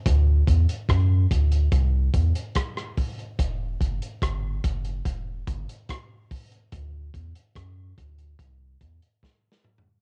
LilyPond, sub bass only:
\new Staff \with { instrumentName = "Sub bass" } { \clef bass \time 4/4 \key e \minor \tempo 4 = 72 d,8 e,16 r16 fis,8 d,8 c,8 e,16 r4 r16 | e,,8 fis,,16 r16 g,,8 fis,,8 e,,8 g,,16 r4 r16 | d,8 e,16 r16 fis,8 d,8 c,8 e,16 r4 r16 | }